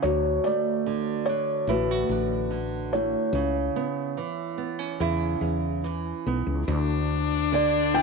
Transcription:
0.02 nylon-string guitar D2, fretless electric bass D2, felt piano F#4 C#5
0.44 nylon-string guitar A3, felt piano D5
0.86 nylon-string guitar D3
1.26 nylon-string guitar D4, felt piano C#5
1.67 fretless electric bass A1, nylon-string guitar A2 E4, felt piano F#4 B4
1.91 nylon-string guitar F#4
2.09 fretless electric bass A1, nylon-string guitar D4
2.51 nylon-string guitar D3
2.93 nylon-string guitar A3, felt piano E4 C#5
3.33 fretless electric bass C#2, nylon-string guitar C#3
3.76 nylon-string guitar B3
4.17 nylon-string guitar E3
4.58 nylon-string guitar B3
4.79 nylon-string guitar C#4
5.00 fretless electric bass E2, nylon-string guitar C#3 E4
5.41 fretless electric bass E2, nylon-string guitar C#4
5.84 nylon-string guitar E3
6.26 fretless electric bass B1, nylon-string guitar B3
6.47 fretless electric bass C#2
6.68 fretless electric bass D2, nylon-string guitar D2, cello D4
7.52 nylon-string guitar D3, felt piano D5
7.94 nylon-string guitar E4, felt piano G5

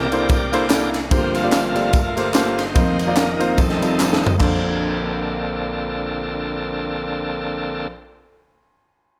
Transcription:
Already playing: grand piano C2 C3, tonewheel organ G4 A#4 D5
0.11 grand piano A#3 D4 E4 A4 C5, ride, tambourine
0.29 kick, ride, tambourine
0.52 grand piano A#3 D4 E4 A4 C5, ride, tambourine
0.69 grand piano A#3 D4 E4 A4 D5, snare, clap, ride, tambourine
0.94 snare, ride, tambourine
1.10 grand piano G1 G2 A#3 F4 G4 A4 C5, tonewheel organ G2 F3 A#3 C4 G4, kick, ride, tambourine
1.35 tonewheel organ A3 A#3 F4, ride, tambourine
1.43 grand piano A#3 F4 G4 A4 D5
1.52 snare, clap, ride, tambourine
1.74 tonewheel organ G2 F3 A3 A#3 F4, grand piano A#3 F4 G4 A4 D5, ride, tambourine
1.93 kick, ride, tambourine
2.16 grand piano A#3 F4 G4 A4 C5, ride, tambourine
2.33 grand piano A#3 F4 G4 A4 C5, snare, clap, ride, tambourine
2.58 tonewheel organ D#4 C5, snare, ride, tambourine
2.74 grand piano F1 F2 A#3 C4 D#4 F4 C5, tonewheel organ F2 D#3 A#3, kick, ride, tambourine
2.99 ride, tambourine
3.06 grand piano A#3 C4 D#4 F4 D5
3.17 tonewheel organ D#4 A#4, snare, clap, ride, tambourine
3.39 grand piano A#3 C4 D#4 F4 C5, ride, tambourine
3.51 tonewheel organ A#4
3.57 grand piano F1 F2, tonewheel organ F2 D#3 A3 C4 D#4 A4, kick, ride, tambourine
3.69 snare
3.81 grand piano G3 C4 D#4 F4 A4, ride, tambourine
3.98 grand piano G3 C4 D#4 F4 A4, snare, clap, tambourine
4.13 snare
4.23 floor tom, tambourine
4.38 grand piano A#1 A#3 D4, tonewheel organ D3 A#3 C4 A4, kick, clap, crash
4.42 grand piano A4 C5

